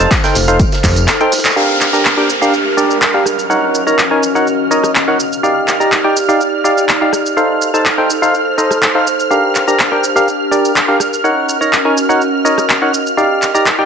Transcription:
Already playing: D#4 G4 A4 C5 D5 F6
0.00 D#4 A4 C5 A5, shaker
0.11 kick, clap, closed hi-hat, tambourine, shaker
0.24 D#4 A4 C5 G5, snare, closed hi-hat, tambourine
0.34 F1, snare, open hi-hat, tambourine, shaker
0.48 D#4 A4 C5 F5, closed hi-hat, shaker
0.59 kick, closed hi-hat, tambourine, shaker
0.72 snare, closed hi-hat, tambourine
0.84 F1, kick, clap, open hi-hat, shaker
0.96 closed hi-hat, tambourine, shaker
1.07 snare, clap, closed hi-hat, tambourine, shaker
1.21 D#4 A4 C5 G5, closed hi-hat
1.32 snare, open hi-hat, tambourine, shaker
1.38 snare, tambourine
1.45 snare, clap, closed hi-hat, tambourine, shaker
1.50 snare, tambourine
1.56 D4 G4 A#4 F5 F6, downlifter, shaker
1.80 G4 A#4, clap, shaker
1.93 D4 G4 A#4 A#5, shaker
2.05 clap, shaker
2.17 D4 G4 A#4 G5
2.29 shaker
2.42 D4 G4 A#4 F5, shaker
2.54 shaker
2.77 D4 G4 A#4 D5, shaker
2.91 shaker
3.02 clap, shaker
3.14 D4 G4 A#4 F5
3.26 C#4, cross-stick, shaker
3.39 shaker
3.50 D#4 A#4 C#5 F#5, shaker
3.54 F#4
3.75 shaker
3.87 D#4 A#4 C#5 A#5, shaker
3.99 clap, shaker
4.11 D#4 A#4 C#5 D#5 G#5
4.23 shaker
4.35 D#4 A#4 C#5 F#5, shaker
4.47 shaker
4.71 D#4 A#4 C#5 D#5, shaker
4.83 cross-stick, shaker
4.95 clap, shaker
5.08 D#4 A#4 C#5 F#5
5.19 D#4, shaker
5.31 G4, shaker
5.43 D#4 G4 D5 F5, shaker
5.68 clap, shaker
5.75 D5
5.80 D#4 G4 D5 A#5, shaker
5.92 clap, shaker
6.04 D#4 G4 D5 G5
6.17 shaker
6.28 D#4 G4 D5 F5, shaker
6.41 shaker
6.64 D#4 G4 D5 F5, shaker
6.78 shaker
6.89 clap, shaker
7.01 D#4 G4 D5 F5
7.13 cross-stick, shaker
7.26 A4, shaker
7.37 D#4 A4 C5 F5, shaker
7.62 shaker
7.72 D#4 A4 C5 A5, shaker
7.86 clap, shaker
7.98 D#4 A4 C5 G5
8.10 shaker
8.22 D#4 A4 C5 F5, shaker
8.34 shaker
8.58 D#4 A4 C5 D#5, shaker
8.71 cross-stick, shaker
8.82 clap, shaker
8.95 D#4 A4 C5 F5
9.07 shaker
9.20 shaker
9.30 D4 G4 A#4 F5, shaker
9.46 G4
9.55 clap, shaker
9.67 D4 G4 A#4 A#5, shaker
9.79 clap, shaker
9.92 D4 G4 A#4 G5
10.04 A#4, shaker
10.16 D4 G4 A#4 F5, shaker
10.28 shaker
10.51 D4 G4 A#4 D5, shaker
10.65 shaker
10.76 clap, shaker
10.88 D4 G4 A#4 F5
11.00 C#4, cross-stick, shaker
11.13 shaker
11.24 D#4 F#4 A#4 C#5 F#5, shaker
11.49 shaker
11.61 D#4 A#4 C#5 A#5, shaker
11.73 clap, shaker
11.85 D#4 A#4 C#5 D#5 G#5
11.97 shaker
12.09 D#4 A#4 C#5 F#5, shaker
12.21 shaker
12.45 D#4 A#4 C#5 D#5, shaker
12.58 cross-stick, shaker
12.69 clap, shaker
12.82 D#4 A#4 C#5 F#5
12.94 D#4, shaker
13.07 shaker
13.17 D#4 G4 D5 F5, shaker
13.33 G4
13.42 clap, shaker
13.54 D#4 G4 D5 A#5, shaker
13.60 D5
13.66 clap, shaker
13.79 D#4 G4 D5 G5

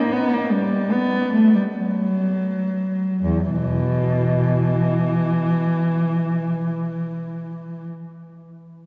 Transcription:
Already playing: A#3
0.12 B3
0.33 A#3
0.51 G3
0.92 B3
1.34 A3
1.55 G3
1.76 F#3
3.24 E2
3.50 B2 E3

